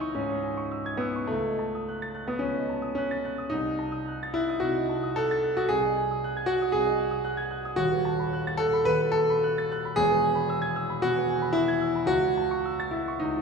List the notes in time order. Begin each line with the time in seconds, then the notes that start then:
Already playing: C#2 D#4 E4 C#5 G#5 E6 G#6
0.00 C#6
0.15 G#2 C#4
0.29 C#5
0.43 G#5
0.57 C#6
0.71 E6
0.86 G#6
0.97 B3 E6
1.16 C#6
1.27 C#2 A3
1.45 D#5
1.59 A5
1.75 D#6
1.89 F#6
2.02 A6
2.15 F#6
2.28 B3 D#6
2.39 C#2 C#4
2.56 D#5
2.69 A5
2.82 D#6
2.95 C#4 F#6
3.11 A6
3.25 F#6
3.38 D#6
3.50 C2 D#4
3.65 D#5
3.79 A5
3.92 D#6
4.08 F#6
4.23 A6
4.34 E4 F#6
4.49 D#6
4.60 C3 F#4
4.77 D#5
4.89 A5
5.03 D#6
5.16 A4 F#6
5.31 A6
5.43 F#6
5.57 F#4 D#6
5.69 C2 G#4
5.84 D#5
5.97 G#5
6.11 D#6
6.24 F#6
6.37 G#6
6.46 F#4 F#6
6.62 D#6
6.72 C2 G#4
6.86 D#5
6.98 G#5
7.11 D#6
7.25 F#6
7.37 G#6
7.51 F#6
7.65 D#6
7.76 D#1 D#2 F#4
7.91 B4
8.05 A5
8.19 B5
8.33 F#6
8.47 A6
8.57 A4 F#6
8.73 B5
8.85 D#2 B4
9.12 A4 A5
9.30 B5
9.43 F#6
9.58 A6
9.72 F#6
9.85 B5
9.96 E1 E2 G#4
10.10 B4
10.24 G#5
10.35 B5
10.50 E6
10.62 G#6
10.76 E6
10.90 B5
11.02 B2 F#4
11.16 B4
11.29 G#5
11.42 B5
11.53 E4 E6
11.68 G#6
11.82 E6
11.95 B5
12.06 C#2 F#4
12.23 C#5
12.37 A5
12.51 C#6
12.65 E6
12.80 A6
12.91 E4 E6
13.08 C#6
13.20 C#2 D#4
13.37 C#5